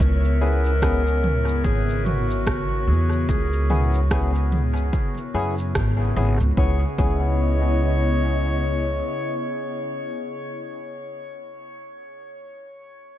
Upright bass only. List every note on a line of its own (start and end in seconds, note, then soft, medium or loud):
0.00 1.61 C#2 loud
1.65 2.89 G#1 medium
2.88 3.25 E2 medium
3.29 4.90 C#2 loud
5.34 5.71 F#2 medium
5.75 6.12 G#1 medium
6.17 6.38 G#1 loud
6.40 6.55 C#2 loud
6.57 6.83 C#2 medium
6.99 9.00 C#2 medium